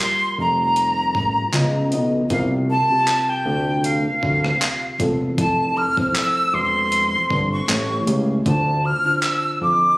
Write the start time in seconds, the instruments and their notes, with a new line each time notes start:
Already playing: synth keys G3 F4 G4 A#4
0.00 flute C6, clap
0.38 analog synth bass F1, flute A#5
0.76 closed hi-hat
1.15 analog synth bass A1, kick
1.52 analog synth bass C#2, synth keys C#3 B3 F4 D#5, clap, closed hi-hat
1.91 analog synth bass B1, synth keys C#3 B3 F4 D#5, closed hi-hat
2.29 analog synth bass C2, synth keys C3 C4 F4 A#4, flute F5, kick, closed hi-hat
2.70 flute A5
2.89 synth keys C3 C4 F4 G4
3.07 clap, closed hi-hat
3.29 flute G5
3.46 analog synth bass D2
3.84 flute F5, closed hi-hat
4.23 analog synth bass D2, kick
4.44 cross-stick
4.62 clap, closed hi-hat
4.98 analog synth bass E1, synth keys C3 C4 F4 A4, kick, closed hi-hat
5.37 analog synth bass F1, synth keys F3 C4 E4 A4, flute A5, kick, closed hi-hat
5.77 flute F6
5.96 synth keys F3 C4 E4 C5, kick
6.15 flute E6, clap, closed hi-hat
6.54 analog synth bass E1, flute C6
6.92 closed hi-hat
7.30 analog synth bass G1, kick
7.52 flute C#6
7.68 analog synth bass A1, synth keys A3 E4 G4 C#5, clap, closed hi-hat
8.06 analog synth bass C#2, synth keys A3 E4 G4 C#5, closed hi-hat
8.45 analog synth bass D2, synth keys D3 D4 F4 C5, flute A5, kick, closed hi-hat
8.85 flute F6
9.04 synth keys D3 D4 F4 C5
9.22 flute E6, clap, closed hi-hat
9.61 analog synth bass F2, flute D6